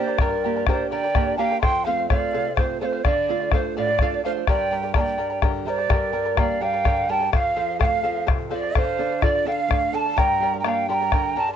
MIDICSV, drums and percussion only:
0, 0, Header, 1, 2, 480
1, 0, Start_track
1, 0, Tempo, 475059
1, 205, Time_signature, 6, 3, 24, 8
1, 11678, End_track
2, 0, Start_track
2, 0, Title_t, "Bombo"
2, 73, Note_on_c, 9, 37, 25
2, 174, Note_off_c, 9, 37, 0
2, 187, Note_on_c, 9, 37, 89
2, 187, Note_on_c, 9, 43, 88
2, 288, Note_off_c, 9, 37, 0
2, 288, Note_off_c, 9, 43, 0
2, 673, Note_on_c, 9, 37, 85
2, 673, Note_on_c, 9, 43, 80
2, 774, Note_off_c, 9, 37, 0
2, 774, Note_off_c, 9, 43, 0
2, 919, Note_on_c, 9, 37, 26
2, 1020, Note_off_c, 9, 37, 0
2, 1161, Note_on_c, 9, 37, 81
2, 1161, Note_on_c, 9, 43, 80
2, 1262, Note_off_c, 9, 37, 0
2, 1262, Note_off_c, 9, 43, 0
2, 1280, Note_on_c, 9, 37, 24
2, 1381, Note_off_c, 9, 37, 0
2, 1521, Note_on_c, 9, 37, 25
2, 1622, Note_off_c, 9, 37, 0
2, 1644, Note_on_c, 9, 37, 81
2, 1644, Note_on_c, 9, 43, 78
2, 1745, Note_off_c, 9, 37, 0
2, 1745, Note_off_c, 9, 43, 0
2, 2124, Note_on_c, 9, 37, 79
2, 2124, Note_on_c, 9, 43, 83
2, 2225, Note_off_c, 9, 37, 0
2, 2225, Note_off_c, 9, 43, 0
2, 2357, Note_on_c, 9, 37, 25
2, 2458, Note_off_c, 9, 37, 0
2, 2599, Note_on_c, 9, 37, 82
2, 2599, Note_on_c, 9, 43, 79
2, 2700, Note_off_c, 9, 37, 0
2, 2700, Note_off_c, 9, 43, 0
2, 2956, Note_on_c, 9, 37, 25
2, 3057, Note_off_c, 9, 37, 0
2, 3079, Note_on_c, 9, 37, 73
2, 3079, Note_on_c, 9, 43, 80
2, 3180, Note_off_c, 9, 37, 0
2, 3180, Note_off_c, 9, 43, 0
2, 3200, Note_on_c, 9, 37, 23
2, 3301, Note_off_c, 9, 37, 0
2, 3437, Note_on_c, 9, 37, 26
2, 3538, Note_off_c, 9, 37, 0
2, 3552, Note_on_c, 9, 37, 76
2, 3552, Note_on_c, 9, 43, 74
2, 3653, Note_off_c, 9, 37, 0
2, 3653, Note_off_c, 9, 43, 0
2, 3681, Note_on_c, 9, 37, 26
2, 3782, Note_off_c, 9, 37, 0
2, 4029, Note_on_c, 9, 37, 75
2, 4029, Note_on_c, 9, 43, 80
2, 4131, Note_off_c, 9, 37, 0
2, 4131, Note_off_c, 9, 43, 0
2, 4283, Note_on_c, 9, 37, 23
2, 4384, Note_off_c, 9, 37, 0
2, 4521, Note_on_c, 9, 37, 77
2, 4521, Note_on_c, 9, 43, 82
2, 4622, Note_off_c, 9, 37, 0
2, 4622, Note_off_c, 9, 43, 0
2, 4993, Note_on_c, 9, 37, 84
2, 4993, Note_on_c, 9, 43, 82
2, 5094, Note_off_c, 9, 37, 0
2, 5094, Note_off_c, 9, 43, 0
2, 5232, Note_on_c, 9, 37, 25
2, 5334, Note_off_c, 9, 37, 0
2, 5479, Note_on_c, 9, 37, 77
2, 5479, Note_on_c, 9, 43, 84
2, 5580, Note_off_c, 9, 37, 0
2, 5580, Note_off_c, 9, 43, 0
2, 5600, Note_on_c, 9, 37, 22
2, 5701, Note_off_c, 9, 37, 0
2, 5847, Note_on_c, 9, 37, 27
2, 5948, Note_off_c, 9, 37, 0
2, 5962, Note_on_c, 9, 37, 80
2, 5962, Note_on_c, 9, 43, 86
2, 6063, Note_off_c, 9, 37, 0
2, 6063, Note_off_c, 9, 43, 0
2, 6439, Note_on_c, 9, 37, 85
2, 6439, Note_on_c, 9, 43, 79
2, 6540, Note_off_c, 9, 37, 0
2, 6540, Note_off_c, 9, 43, 0
2, 6695, Note_on_c, 9, 37, 24
2, 6796, Note_off_c, 9, 37, 0
2, 6924, Note_on_c, 9, 37, 76
2, 6924, Note_on_c, 9, 43, 77
2, 7025, Note_off_c, 9, 37, 0
2, 7025, Note_off_c, 9, 43, 0
2, 7047, Note_on_c, 9, 37, 23
2, 7148, Note_off_c, 9, 37, 0
2, 7289, Note_on_c, 9, 37, 23
2, 7390, Note_off_c, 9, 37, 0
2, 7408, Note_on_c, 9, 37, 81
2, 7408, Note_on_c, 9, 43, 77
2, 7509, Note_off_c, 9, 37, 0
2, 7509, Note_off_c, 9, 43, 0
2, 7888, Note_on_c, 9, 37, 75
2, 7888, Note_on_c, 9, 43, 76
2, 7989, Note_off_c, 9, 37, 0
2, 7989, Note_off_c, 9, 43, 0
2, 8130, Note_on_c, 9, 37, 25
2, 8231, Note_off_c, 9, 37, 0
2, 8369, Note_on_c, 9, 37, 80
2, 8369, Note_on_c, 9, 43, 81
2, 8470, Note_off_c, 9, 37, 0
2, 8470, Note_off_c, 9, 43, 0
2, 8490, Note_on_c, 9, 37, 22
2, 8591, Note_off_c, 9, 37, 0
2, 8724, Note_on_c, 9, 37, 26
2, 8825, Note_off_c, 9, 37, 0
2, 8845, Note_on_c, 9, 37, 80
2, 8845, Note_on_c, 9, 43, 85
2, 8946, Note_off_c, 9, 37, 0
2, 8946, Note_off_c, 9, 43, 0
2, 9084, Note_on_c, 9, 37, 25
2, 9185, Note_off_c, 9, 37, 0
2, 9319, Note_on_c, 9, 37, 75
2, 9319, Note_on_c, 9, 43, 76
2, 9420, Note_off_c, 9, 37, 0
2, 9420, Note_off_c, 9, 43, 0
2, 9453, Note_on_c, 9, 37, 26
2, 9554, Note_off_c, 9, 37, 0
2, 9566, Note_on_c, 9, 37, 23
2, 9667, Note_off_c, 9, 37, 0
2, 9808, Note_on_c, 9, 37, 78
2, 9808, Note_on_c, 9, 43, 73
2, 9910, Note_off_c, 9, 37, 0
2, 9910, Note_off_c, 9, 43, 0
2, 9931, Note_on_c, 9, 37, 22
2, 10032, Note_off_c, 9, 37, 0
2, 10166, Note_on_c, 9, 37, 24
2, 10267, Note_off_c, 9, 37, 0
2, 10284, Note_on_c, 9, 37, 75
2, 10284, Note_on_c, 9, 43, 76
2, 10385, Note_off_c, 9, 37, 0
2, 10385, Note_off_c, 9, 43, 0
2, 10756, Note_on_c, 9, 37, 75
2, 10857, Note_off_c, 9, 37, 0
2, 11002, Note_on_c, 9, 37, 25
2, 11103, Note_off_c, 9, 37, 0
2, 11236, Note_on_c, 9, 37, 80
2, 11236, Note_on_c, 9, 43, 80
2, 11337, Note_off_c, 9, 37, 0
2, 11337, Note_off_c, 9, 43, 0
2, 11603, Note_on_c, 9, 37, 25
2, 11678, Note_off_c, 9, 37, 0
2, 11678, End_track
0, 0, End_of_file